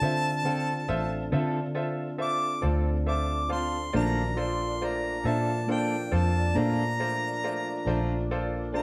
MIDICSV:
0, 0, Header, 1, 7, 480
1, 0, Start_track
1, 0, Tempo, 872093
1, 2172, Time_signature, 12, 3, 24, 8
1, 4858, End_track
2, 0, Start_track
2, 0, Title_t, "Harmonica"
2, 0, Program_c, 0, 22
2, 0, Note_on_c, 0, 81, 105
2, 713, Note_off_c, 0, 81, 0
2, 1220, Note_on_c, 0, 86, 91
2, 1449, Note_off_c, 0, 86, 0
2, 1697, Note_on_c, 0, 86, 81
2, 1927, Note_off_c, 0, 86, 0
2, 1938, Note_on_c, 0, 84, 85
2, 2168, Note_off_c, 0, 84, 0
2, 2178, Note_on_c, 0, 82, 85
2, 2415, Note_on_c, 0, 84, 85
2, 2423, Note_off_c, 0, 82, 0
2, 2666, Note_on_c, 0, 82, 83
2, 2674, Note_off_c, 0, 84, 0
2, 2904, Note_on_c, 0, 81, 88
2, 2912, Note_off_c, 0, 82, 0
2, 3131, Note_off_c, 0, 81, 0
2, 3143, Note_on_c, 0, 79, 84
2, 3383, Note_on_c, 0, 81, 84
2, 3392, Note_off_c, 0, 79, 0
2, 3615, Note_on_c, 0, 82, 101
2, 3623, Note_off_c, 0, 81, 0
2, 4552, Note_off_c, 0, 82, 0
2, 4820, Note_on_c, 0, 82, 89
2, 4858, Note_off_c, 0, 82, 0
2, 4858, End_track
3, 0, Start_track
3, 0, Title_t, "Grand piano"
3, 0, Program_c, 1, 0
3, 11, Note_on_c, 1, 65, 53
3, 13, Note_on_c, 1, 69, 50
3, 16, Note_on_c, 1, 76, 55
3, 17, Note_on_c, 1, 72, 48
3, 191, Note_off_c, 1, 65, 0
3, 192, Note_off_c, 1, 69, 0
3, 194, Note_off_c, 1, 72, 0
3, 194, Note_off_c, 1, 76, 0
3, 247, Note_on_c, 1, 72, 43
3, 249, Note_on_c, 1, 65, 50
3, 249, Note_on_c, 1, 79, 58
3, 250, Note_on_c, 1, 69, 46
3, 429, Note_off_c, 1, 72, 0
3, 430, Note_off_c, 1, 65, 0
3, 430, Note_off_c, 1, 69, 0
3, 430, Note_off_c, 1, 79, 0
3, 486, Note_on_c, 1, 65, 70
3, 488, Note_on_c, 1, 72, 63
3, 488, Note_on_c, 1, 76, 69
3, 489, Note_on_c, 1, 69, 59
3, 669, Note_off_c, 1, 65, 0
3, 670, Note_off_c, 1, 69, 0
3, 670, Note_off_c, 1, 72, 0
3, 670, Note_off_c, 1, 76, 0
3, 726, Note_on_c, 1, 69, 54
3, 727, Note_on_c, 1, 65, 65
3, 728, Note_on_c, 1, 72, 60
3, 731, Note_on_c, 1, 76, 66
3, 909, Note_off_c, 1, 65, 0
3, 909, Note_off_c, 1, 69, 0
3, 910, Note_off_c, 1, 72, 0
3, 911, Note_off_c, 1, 76, 0
3, 961, Note_on_c, 1, 65, 63
3, 963, Note_on_c, 1, 72, 54
3, 964, Note_on_c, 1, 69, 58
3, 965, Note_on_c, 1, 76, 63
3, 1147, Note_off_c, 1, 65, 0
3, 1147, Note_off_c, 1, 72, 0
3, 1148, Note_off_c, 1, 69, 0
3, 1149, Note_off_c, 1, 76, 0
3, 1202, Note_on_c, 1, 65, 54
3, 1202, Note_on_c, 1, 69, 47
3, 1202, Note_on_c, 1, 72, 49
3, 1202, Note_on_c, 1, 76, 60
3, 1387, Note_off_c, 1, 65, 0
3, 1387, Note_off_c, 1, 69, 0
3, 1387, Note_off_c, 1, 72, 0
3, 1387, Note_off_c, 1, 76, 0
3, 1442, Note_on_c, 1, 69, 48
3, 1442, Note_on_c, 1, 72, 48
3, 1442, Note_on_c, 1, 74, 56
3, 1443, Note_on_c, 1, 65, 49
3, 1627, Note_off_c, 1, 69, 0
3, 1627, Note_off_c, 1, 72, 0
3, 1627, Note_off_c, 1, 74, 0
3, 1628, Note_off_c, 1, 65, 0
3, 1686, Note_on_c, 1, 69, 49
3, 1687, Note_on_c, 1, 76, 54
3, 1688, Note_on_c, 1, 72, 46
3, 1689, Note_on_c, 1, 65, 55
3, 1869, Note_off_c, 1, 69, 0
3, 1869, Note_off_c, 1, 76, 0
3, 1870, Note_off_c, 1, 65, 0
3, 1870, Note_off_c, 1, 72, 0
3, 1922, Note_on_c, 1, 69, 41
3, 1923, Note_on_c, 1, 72, 44
3, 1924, Note_on_c, 1, 65, 51
3, 1924, Note_on_c, 1, 77, 55
3, 2107, Note_off_c, 1, 69, 0
3, 2108, Note_off_c, 1, 65, 0
3, 2108, Note_off_c, 1, 72, 0
3, 2108, Note_off_c, 1, 77, 0
3, 2163, Note_on_c, 1, 65, 63
3, 2165, Note_on_c, 1, 57, 53
3, 2165, Note_on_c, 1, 72, 55
3, 2165, Note_on_c, 1, 74, 65
3, 2348, Note_off_c, 1, 65, 0
3, 2349, Note_off_c, 1, 57, 0
3, 2349, Note_off_c, 1, 72, 0
3, 2349, Note_off_c, 1, 74, 0
3, 2404, Note_on_c, 1, 69, 48
3, 2406, Note_on_c, 1, 65, 55
3, 2406, Note_on_c, 1, 72, 49
3, 2408, Note_on_c, 1, 74, 58
3, 2588, Note_off_c, 1, 69, 0
3, 2589, Note_off_c, 1, 65, 0
3, 2589, Note_off_c, 1, 72, 0
3, 2590, Note_off_c, 1, 74, 0
3, 2650, Note_on_c, 1, 72, 48
3, 2651, Note_on_c, 1, 65, 52
3, 2652, Note_on_c, 1, 57, 47
3, 2653, Note_on_c, 1, 74, 58
3, 2831, Note_off_c, 1, 72, 0
3, 2832, Note_off_c, 1, 57, 0
3, 2832, Note_off_c, 1, 65, 0
3, 2833, Note_off_c, 1, 74, 0
3, 2888, Note_on_c, 1, 65, 51
3, 2889, Note_on_c, 1, 69, 49
3, 2891, Note_on_c, 1, 72, 49
3, 2893, Note_on_c, 1, 76, 59
3, 3070, Note_off_c, 1, 65, 0
3, 3071, Note_off_c, 1, 69, 0
3, 3072, Note_off_c, 1, 72, 0
3, 3073, Note_off_c, 1, 76, 0
3, 3128, Note_on_c, 1, 65, 51
3, 3128, Note_on_c, 1, 69, 48
3, 3130, Note_on_c, 1, 74, 57
3, 3132, Note_on_c, 1, 72, 50
3, 3310, Note_off_c, 1, 65, 0
3, 3310, Note_off_c, 1, 69, 0
3, 3311, Note_off_c, 1, 74, 0
3, 3312, Note_off_c, 1, 72, 0
3, 3365, Note_on_c, 1, 69, 52
3, 3366, Note_on_c, 1, 65, 54
3, 3368, Note_on_c, 1, 72, 53
3, 3368, Note_on_c, 1, 74, 61
3, 3549, Note_off_c, 1, 65, 0
3, 3549, Note_off_c, 1, 69, 0
3, 3550, Note_off_c, 1, 72, 0
3, 3550, Note_off_c, 1, 74, 0
3, 3610, Note_on_c, 1, 65, 50
3, 3611, Note_on_c, 1, 57, 52
3, 3611, Note_on_c, 1, 72, 48
3, 3611, Note_on_c, 1, 74, 62
3, 3791, Note_off_c, 1, 65, 0
3, 3792, Note_off_c, 1, 57, 0
3, 3792, Note_off_c, 1, 72, 0
3, 3792, Note_off_c, 1, 74, 0
3, 3852, Note_on_c, 1, 57, 49
3, 3852, Note_on_c, 1, 65, 54
3, 3852, Note_on_c, 1, 72, 52
3, 3855, Note_on_c, 1, 74, 58
3, 4032, Note_off_c, 1, 57, 0
3, 4032, Note_off_c, 1, 65, 0
3, 4032, Note_off_c, 1, 72, 0
3, 4033, Note_off_c, 1, 74, 0
3, 4093, Note_on_c, 1, 65, 58
3, 4096, Note_on_c, 1, 57, 49
3, 4096, Note_on_c, 1, 72, 49
3, 4097, Note_on_c, 1, 74, 56
3, 4273, Note_off_c, 1, 65, 0
3, 4274, Note_off_c, 1, 57, 0
3, 4274, Note_off_c, 1, 72, 0
3, 4275, Note_off_c, 1, 74, 0
3, 4331, Note_on_c, 1, 65, 59
3, 4332, Note_on_c, 1, 72, 59
3, 4334, Note_on_c, 1, 57, 60
3, 4334, Note_on_c, 1, 74, 71
3, 4512, Note_off_c, 1, 65, 0
3, 4512, Note_off_c, 1, 72, 0
3, 4513, Note_off_c, 1, 57, 0
3, 4513, Note_off_c, 1, 74, 0
3, 4574, Note_on_c, 1, 69, 60
3, 4575, Note_on_c, 1, 65, 63
3, 4576, Note_on_c, 1, 72, 61
3, 4576, Note_on_c, 1, 74, 68
3, 4753, Note_off_c, 1, 69, 0
3, 4754, Note_off_c, 1, 65, 0
3, 4754, Note_off_c, 1, 72, 0
3, 4754, Note_off_c, 1, 74, 0
3, 4809, Note_on_c, 1, 65, 50
3, 4810, Note_on_c, 1, 72, 47
3, 4811, Note_on_c, 1, 57, 49
3, 4812, Note_on_c, 1, 74, 53
3, 4858, Note_off_c, 1, 57, 0
3, 4858, Note_off_c, 1, 65, 0
3, 4858, Note_off_c, 1, 72, 0
3, 4858, Note_off_c, 1, 74, 0
3, 4858, End_track
4, 0, Start_track
4, 0, Title_t, "Clean electric guitar"
4, 0, Program_c, 2, 27
4, 0, Note_on_c, 2, 69, 46
4, 12, Note_on_c, 2, 65, 48
4, 21, Note_on_c, 2, 60, 42
4, 150, Note_off_c, 2, 69, 0
4, 156, Note_off_c, 2, 65, 0
4, 160, Note_off_c, 2, 60, 0
4, 238, Note_on_c, 2, 50, 52
4, 248, Note_on_c, 2, 60, 60
4, 250, Note_on_c, 2, 65, 62
4, 258, Note_on_c, 2, 69, 64
4, 389, Note_off_c, 2, 50, 0
4, 394, Note_off_c, 2, 60, 0
4, 395, Note_off_c, 2, 65, 0
4, 398, Note_off_c, 2, 69, 0
4, 724, Note_on_c, 2, 50, 74
4, 728, Note_on_c, 2, 60, 80
4, 732, Note_on_c, 2, 65, 76
4, 733, Note_on_c, 2, 69, 92
4, 872, Note_off_c, 2, 50, 0
4, 874, Note_off_c, 2, 60, 0
4, 876, Note_off_c, 2, 65, 0
4, 876, Note_off_c, 2, 69, 0
4, 1438, Note_on_c, 2, 69, 47
4, 1450, Note_on_c, 2, 65, 45
4, 1457, Note_on_c, 2, 60, 42
4, 1589, Note_off_c, 2, 69, 0
4, 1595, Note_off_c, 2, 65, 0
4, 1599, Note_off_c, 2, 60, 0
4, 1922, Note_on_c, 2, 69, 47
4, 1933, Note_on_c, 2, 65, 41
4, 1943, Note_on_c, 2, 60, 42
4, 2071, Note_off_c, 2, 69, 0
4, 2077, Note_off_c, 2, 65, 0
4, 2082, Note_off_c, 2, 60, 0
4, 2168, Note_on_c, 2, 58, 64
4, 2173, Note_on_c, 2, 62, 77
4, 2178, Note_on_c, 2, 65, 71
4, 2180, Note_on_c, 2, 69, 72
4, 2314, Note_off_c, 2, 58, 0
4, 2317, Note_off_c, 2, 62, 0
4, 2319, Note_off_c, 2, 65, 0
4, 2320, Note_off_c, 2, 69, 0
4, 2883, Note_on_c, 2, 69, 50
4, 2894, Note_on_c, 2, 65, 43
4, 2901, Note_on_c, 2, 62, 39
4, 3032, Note_off_c, 2, 69, 0
4, 3037, Note_off_c, 2, 65, 0
4, 3041, Note_off_c, 2, 62, 0
4, 3121, Note_on_c, 2, 58, 60
4, 3130, Note_on_c, 2, 62, 64
4, 3136, Note_on_c, 2, 65, 65
4, 3139, Note_on_c, 2, 69, 58
4, 3271, Note_off_c, 2, 58, 0
4, 3275, Note_off_c, 2, 62, 0
4, 3278, Note_off_c, 2, 65, 0
4, 3280, Note_off_c, 2, 69, 0
4, 3603, Note_on_c, 2, 58, 60
4, 3608, Note_on_c, 2, 62, 68
4, 3611, Note_on_c, 2, 65, 74
4, 3616, Note_on_c, 2, 69, 76
4, 3752, Note_off_c, 2, 58, 0
4, 3754, Note_off_c, 2, 62, 0
4, 3755, Note_off_c, 2, 65, 0
4, 3758, Note_off_c, 2, 69, 0
4, 4323, Note_on_c, 2, 69, 53
4, 4336, Note_on_c, 2, 65, 56
4, 4343, Note_on_c, 2, 62, 49
4, 4472, Note_off_c, 2, 69, 0
4, 4478, Note_off_c, 2, 65, 0
4, 4482, Note_off_c, 2, 62, 0
4, 4802, Note_on_c, 2, 69, 49
4, 4814, Note_on_c, 2, 65, 44
4, 4820, Note_on_c, 2, 62, 41
4, 4858, Note_off_c, 2, 62, 0
4, 4858, Note_off_c, 2, 65, 0
4, 4858, Note_off_c, 2, 69, 0
4, 4858, End_track
5, 0, Start_track
5, 0, Title_t, "Tonewheel organ"
5, 0, Program_c, 3, 16
5, 0, Note_on_c, 3, 60, 65
5, 0, Note_on_c, 3, 62, 60
5, 0, Note_on_c, 3, 65, 63
5, 0, Note_on_c, 3, 69, 66
5, 2148, Note_off_c, 3, 60, 0
5, 2148, Note_off_c, 3, 62, 0
5, 2148, Note_off_c, 3, 65, 0
5, 2150, Note_off_c, 3, 69, 0
5, 2160, Note_on_c, 3, 82, 57
5, 2161, Note_on_c, 3, 51, 58
5, 2161, Note_on_c, 3, 62, 58
5, 2163, Note_on_c, 3, 54, 58
5, 2391, Note_off_c, 3, 62, 0
5, 2395, Note_on_c, 3, 65, 64
5, 2397, Note_on_c, 3, 53, 58
5, 2397, Note_on_c, 3, 62, 64
5, 2406, Note_off_c, 3, 82, 0
5, 2407, Note_off_c, 3, 51, 0
5, 2408, Note_off_c, 3, 54, 0
5, 4858, Note_off_c, 3, 53, 0
5, 4858, Note_off_c, 3, 62, 0
5, 4858, Note_off_c, 3, 65, 0
5, 4858, End_track
6, 0, Start_track
6, 0, Title_t, "Accordion"
6, 0, Program_c, 4, 21
6, 2169, Note_on_c, 4, 62, 74
6, 2172, Note_on_c, 4, 58, 64
6, 4858, Note_off_c, 4, 58, 0
6, 4858, Note_off_c, 4, 62, 0
6, 4858, End_track
7, 0, Start_track
7, 0, Title_t, "Fingered electric bass"
7, 0, Program_c, 5, 33
7, 8, Note_on_c, 5, 50, 94
7, 468, Note_off_c, 5, 50, 0
7, 491, Note_on_c, 5, 33, 84
7, 712, Note_off_c, 5, 33, 0
7, 729, Note_on_c, 5, 50, 90
7, 1429, Note_off_c, 5, 50, 0
7, 1449, Note_on_c, 5, 38, 94
7, 2149, Note_off_c, 5, 38, 0
7, 2171, Note_on_c, 5, 34, 91
7, 2870, Note_off_c, 5, 34, 0
7, 2888, Note_on_c, 5, 46, 83
7, 3348, Note_off_c, 5, 46, 0
7, 3370, Note_on_c, 5, 41, 89
7, 3592, Note_off_c, 5, 41, 0
7, 3610, Note_on_c, 5, 46, 85
7, 4309, Note_off_c, 5, 46, 0
7, 4328, Note_on_c, 5, 34, 99
7, 4858, Note_off_c, 5, 34, 0
7, 4858, End_track
0, 0, End_of_file